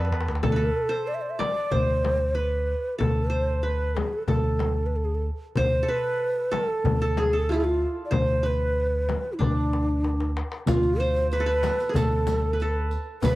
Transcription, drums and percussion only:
0.05 darbuka ka medium
0.12 darbuka tek medium
0.21 darbuka ka medium
0.28 darbuka tek medium
0.35 darbuka ka medium
0.43 frame drum medium
0.43 darbuka dum medium
0.92 darbuka ka soft
1.09 darbuka ka soft
1.40 darbuka tek medium
1.40 frame drum medium
1.72 frame drum medium
1.72 darbuka dum medium
1.90 darbuka ka soft
2.05 darbuka tek medium
2.05 frame drum medium
3.00 frame drum medium
3.00 darbuka dum medium
3.49 darbuka ka soft
3.66 darbuka ka soft
3.97 darbuka tek medium
3.97 frame drum medium
4.28 frame drum medium
4.28 darbuka dum medium
4.45 darbuka ka soft
4.59 darbuka tek medium
4.59 frame drum medium
5.56 darbuka dum medium
5.56 frame drum medium
6.04 darbuka ka soft
6.20 darbuka ka soft
6.53 darbuka tek medium
6.53 frame drum medium
6.85 darbuka dum medium
6.85 frame drum medium
7.01 darbuka ka soft
7.17 darbuka tek medium
7.17 frame drum medium
8.12 darbuka dum medium
8.12 frame drum medium
8.46 darbuka ka soft
8.62 darbuka ka soft
9.09 darbuka tek medium
9.09 frame drum medium
9.26 darbuka ka soft
9.40 frame drum medium
9.40 darbuka dum medium
9.73 darbuka tek medium
10.04 darbuka tek soft
10.20 darbuka ka medium
10.37 darbuka tek medium
10.52 darbuka ka medium
10.67 riq medium
10.67 frame drum medium
10.67 darbuka dum medium
10.83 riq soft
10.83 darbuka ka soft
11.00 riq soft
11.16 riq soft
11.31 riq soft
11.31 darbuka ka soft
11.63 riq soft
11.63 darbuka tek medium
11.63 frame drum medium
11.80 riq soft
11.80 darbuka ka soft
11.95 riq medium
11.95 darbuka dum medium
11.95 frame drum medium
12.27 riq soft
12.27 frame drum medium
12.60 riq soft
12.60 darbuka ka soft
12.91 riq soft
13.22 riq medium
13.22 frame drum medium
13.22 darbuka dum medium

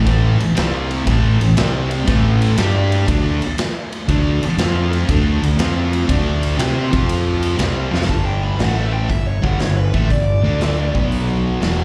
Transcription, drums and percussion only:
0.06 kick loud
0.06 ride medium
0.40 ride medium
0.57 snare loud
0.57 ride medium
0.91 ride medium
1.07 kick loud
1.07 ride loud
1.41 ride medium
1.57 snare loud
1.57 ride medium
1.91 ride medium
2.07 kick loud
2.07 ride loud
2.42 ride medium
2.58 snare loud
2.58 ride loud
2.92 ride medium
3.08 kick loud
3.08 ride loud
3.42 ride medium
3.58 snare loud
3.58 ride medium
3.92 ride medium
4.09 kick loud
4.09 ride medium
4.43 ride medium
4.58 snare loud
4.58 ride medium
4.93 ride medium
5.09 kick loud
5.09 ride medium
5.43 ride medium
5.59 snare loud
5.59 ride medium
5.93 ride medium
6.09 kick loud
6.09 ride medium
6.43 ride medium
6.59 snare loud
6.59 ride loud
6.93 kick loud
6.93 ride medium
7.09 ride medium
7.42 ride medium
7.59 snare loud
7.59 ride medium
7.94 snare medium
8.02 snare medium
8.09 kick medium
8.09 open hi-hat soft
8.59 snare loud
8.59 open hi-hat soft
9.10 kick medium
9.10 open hi-hat soft
9.44 kick loud
9.60 snare loud
9.60 open hi-hat soft
9.94 kick loud
10.10 kick medium
10.10 open hi-hat soft
10.61 snare loud
10.61 open hi-hat soft
10.95 kick loud
11.12 open hi-hat soft
11.62 snare loud
11.62 open hi-hat soft

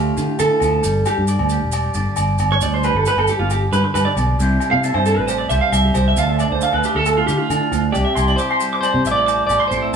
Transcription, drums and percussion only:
0.17 maracas medium
0.39 low agogo medium
0.39 maracas loud
0.60 low agogo medium
0.60 maracas medium
0.84 maracas loud
1.06 low agogo medium
1.06 maracas medium
1.28 maracas medium
1.39 low agogo medium
1.49 maracas medium
1.72 low agogo medium
1.72 maracas medium
1.94 maracas medium
2.16 low agogo medium
2.16 maracas loud
2.38 low agogo medium
2.38 maracas medium
2.61 maracas loud
2.83 low agogo medium
2.83 maracas medium
3.05 maracas medium
3.18 low agogo medium
3.27 maracas medium
3.50 low agogo medium
3.50 maracas medium
3.73 maracas medium
3.95 low agogo medium
3.95 maracas loud
4.17 low agogo medium
4.17 maracas medium
4.40 maracas medium
4.60 low agogo medium
4.60 maracas medium
4.84 maracas medium
4.94 low agogo medium
5.06 maracas medium
5.28 low agogo medium
5.28 maracas medium
5.50 maracas medium
5.72 low agogo medium
5.72 maracas loud
5.94 low agogo medium
5.94 maracas medium
6.17 maracas loud
6.39 low agogo medium
6.39 maracas medium
6.61 maracas medium
6.73 low agogo medium
6.84 maracas medium
7.06 low agogo medium
7.06 maracas medium
7.28 maracas medium
7.50 low agogo medium
7.50 maracas loud
7.72 low agogo medium
7.72 maracas medium
7.95 maracas medium
8.16 low agogo medium
8.16 maracas medium
8.28 maracas soft
8.38 maracas medium
8.51 low agogo medium
8.60 maracas medium
8.83 low agogo medium
8.83 maracas medium
9.05 maracas medium
9.28 low agogo medium
9.28 maracas medium
9.49 low agogo medium
9.49 maracas medium
9.71 maracas medium

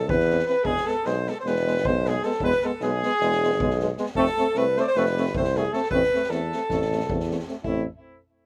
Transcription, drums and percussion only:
0.09 kick loud
0.20 snare soft
0.30 snare soft
0.39 snare soft
0.47 snare soft
0.65 kick medium
0.76 snare soft
0.87 snare soft
1.05 snare soft
1.27 snare soft
1.46 snare soft
1.56 snare soft
1.67 snare soft
1.77 snare soft
1.85 kick medium
2.05 snare soft
2.23 snare soft
2.31 snare soft
2.40 kick medium
2.51 snare soft
2.61 snare soft
2.80 snare soft
3.02 snare soft
3.20 snare soft
3.31 snare soft
3.43 snare soft
3.51 snare soft
3.60 kick loud
3.70 snare soft
3.80 snare soft
3.97 snare soft
4.06 snare soft
4.15 kick medium
4.26 snare soft
4.37 snare soft
4.55 snare soft
4.76 snare soft
4.95 snare soft
5.05 snare soft
5.16 snare soft
5.25 snare soft
5.35 kick loud
5.44 snare soft
5.55 snare soft
5.73 snare soft
5.82 snare soft
5.91 kick medium
6.03 snare soft
6.14 snare soft
6.23 snare soft
6.31 snare soft
6.52 snare soft
6.70 kick medium
6.70 snare soft
6.81 snare soft
6.92 snare soft
7.00 snare soft
7.10 kick medium
7.20 snare soft
7.31 snare soft
7.39 snare soft
7.48 snare soft
7.64 kick medium

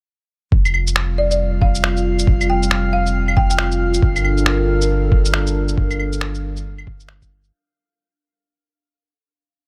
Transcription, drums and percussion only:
0.52 kick loud
0.65 claves medium
0.65 shaker soft
0.74 claves medium
0.87 shaker medium
0.96 finger snap loud
1.31 shaker medium
1.62 kick loud
1.75 shaker medium
1.84 finger snap loud
1.97 shaker soft
2.19 shaker medium
2.27 kick loud
2.41 claves medium
2.41 shaker soft
2.63 shaker medium
2.71 finger snap loud
3.06 shaker medium
3.28 claves medium
3.37 kick loud
3.50 shaker medium
3.59 finger snap loud
3.72 shaker soft
3.94 shaker medium
4.03 kick loud
4.16 claves medium
4.16 shaker soft
4.24 claves medium
4.37 shaker medium
4.46 finger snap loud
4.81 shaker medium
5.12 kick loud
5.25 shaker medium
5.34 finger snap loud
5.47 shaker soft
5.68 shaker medium
5.78 kick loud
5.91 claves medium
5.91 shaker soft
6.00 claves medium
6.13 shaker medium
6.21 finger snap loud
6.35 shaker soft
6.57 shaker medium
6.78 claves medium
6.87 kick loud
7.00 shaker medium
7.09 finger snap loud
7.22 kick medium
7.22 shaker soft
7.44 shaker medium

